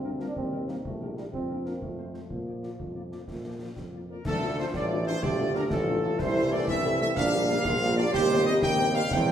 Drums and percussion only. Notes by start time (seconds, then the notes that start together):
0.20 snare
0.36 concert bass drum
0.68 snare
0.85 concert bass drum
1.17 snare
1.33 concert bass drum
1.66 snare
1.82 concert bass drum
2.14 snare
2.30 concert bass drum
2.63 snare
2.80 concert bass drum
3.12 snare
3.28 concert bass drum, snare
3.76 concert bass drum, snare
4.25 concert bass drum, snare, crash
4.74 concert bass drum, snare
5.23 concert bass drum, snare
5.55 snare
5.70 concert bass drum, snare
6.19 concert bass drum, snare, crash
6.67 concert bass drum, snare
7.16 concert bass drum, snare
7.49 snare
7.65 concert bass drum, snare
8.14 concert bass drum, snare, crash
8.62 concert bass drum, snare
9.11 concert bass drum, snare